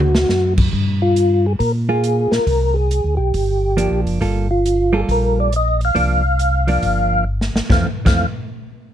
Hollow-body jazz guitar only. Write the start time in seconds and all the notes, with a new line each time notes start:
1.89 A#3 F4
3.77 F3 A#3 D4
4.21 G3 A#3 F4 A4
4.93 G3 A#3 F4 A4
5.95 F3 A#3 D4
6.67 F3 A#3 D4
7.70 E3 A3 C4
8.05 E3 A3 C4